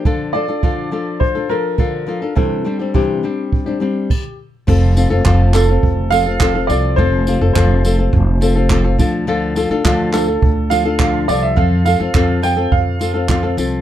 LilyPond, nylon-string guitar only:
\new Staff \with { instrumentName = "Nylon-string guitar" } { \time 4/4 \key f \major \tempo 4 = 104 <d f d' f' a'>8 <f d' f' a'>16 <d' f' a'>16 <d f d' f' a'>8 <f d' f' a'>8. <d' f' a'>16 <f d' f' a'>8 <d f d' f' a'>8 <f d' f' a'>16 <d' f' a'>16 | <c e g c' d' g'>8 <g c' d' g'>16 <g c' d' g'>16 <c e g c' d' g'>8 <g c' d' g'>8. <g c' d' g'>16 <g c' d' g'>8 r4 | <f c' f' a'>8 <f c' f' a'>16 <c' f' a'>16 <f c' f' a'>8 <f c' f' a'>16 <c' f' a'>8. <f c' f' a'>16 <c' f' a'>16 <f c' f' a'>16 <c' f' a'>16 <f c' f' a'>8 | <f c' f' a'>8 <f c' f' a'>16 <c' f' a'>16 <f c' f' a'>8 <f c' f' a'>16 <c' f' a'>8. <f c' f' a'>16 <c' f' a'>16 <f c' f' a'>16 <c' f' a'>16 <f d' f' a'>8 |
<d f d' f' a'>8 <f d' f' a'>16 <d' f' a'>16 <d f d' f' a'>8 <f d' f' a'>16 <d' f' a'>8. <f d' f' a'>16 <d' f' a'>16 <d f d' f' a'>8 <f d' f' a'>8 | <f c' f' a'>8 <f c' f' a'>16 <c' f' a'>16 <f c' f' a'>8 <f c' f' a'>16 <c' f' a'>8. <f c' f' a'>16 <c' f' a'>16 <f c' f' a'>16 <c' f' a'>16 <f c' f' a'>8 | }